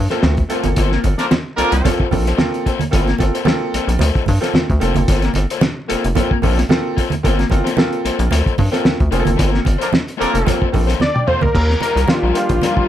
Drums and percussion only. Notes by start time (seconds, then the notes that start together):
0.10 snare, closed hi-hat
0.23 snare, high conga
0.37 kick, closed hi-hat
0.50 closed hi-hat
0.64 closed hi-hat, high conga
0.76 kick, closed hi-hat
0.92 snare
1.04 kick, closed hi-hat, muted conga
1.18 snare, closed hi-hat
1.31 snare, high conga
1.58 closed hi-hat
1.72 closed hi-hat
1.85 kick, snare, closed hi-hat, muted conga, low conga
2.00 kick
2.11 kick, open hi-hat, low conga
2.26 snare, closed hi-hat
2.38 snare, high conga
2.54 closed hi-hat
2.66 kick, closed hi-hat
2.79 closed hi-hat, high conga
2.93 kick, closed hi-hat
3.07 snare, closed hi-hat
3.19 kick, closed hi-hat, muted conga
3.35 closed hi-hat
3.45 snare, high conga
3.74 closed hi-hat
3.89 closed hi-hat
3.99 snare, closed hi-hat, muted conga
4.15 kick, closed hi-hat
4.26 kick, open hi-hat, muted conga, low conga
4.43 snare, closed hi-hat
4.54 snare, high conga
4.70 kick, closed hi-hat
4.81 closed hi-hat
4.94 closed hi-hat, high conga
5.08 kick, closed hi-hat
5.22 snare, closed hi-hat
5.34 closed hi-hat, muted conga
5.50 closed hi-hat
5.61 snare, high conga
5.90 closed hi-hat
6.04 closed hi-hat
6.15 kick, snare, closed hi-hat, muted conga, low conga
6.31 kick
6.42 kick, open hi-hat, low conga
6.58 snare, closed hi-hat
6.69 snare, high conga
6.98 kick, closed hi-hat
7.10 closed hi-hat, high conga
7.24 kick, closed hi-hat
7.39 snare, closed hi-hat
7.50 kick, closed hi-hat, muted conga
7.66 snare, closed hi-hat
7.77 snare, high conga
7.93 closed hi-hat
8.06 closed hi-hat
8.19 closed hi-hat
8.31 snare, closed hi-hat, muted conga
8.46 kick, closed hi-hat
8.58 kick, open hi-hat, muted conga, low conga
8.73 snare, closed hi-hat
8.85 snare, high conga
9.00 kick, closed hi-hat
9.12 closed hi-hat
9.25 closed hi-hat, high conga
9.39 kick, closed hi-hat
9.54 snare
9.65 kick, closed hi-hat, muted conga
9.81 closed hi-hat
9.93 snare, high conga
10.08 closed hi-hat
10.21 closed hi-hat
10.35 closed hi-hat
10.47 kick, snare, closed hi-hat, muted conga, low conga
10.62 kick
10.73 kick, open hi-hat, muted conga, low conga
10.89 snare, closed hi-hat
11.00 snare, high conga
11.16 high tom
11.28 mid tom
11.41 floor tom, high conga
11.55 kick, crash
11.70 snare
11.81 closed hi-hat, muted conga
11.97 closed hi-hat
12.08 snare, high conga
12.35 closed hi-hat
12.49 kick, closed hi-hat
12.62 snare, closed hi-hat, muted conga
12.77 kick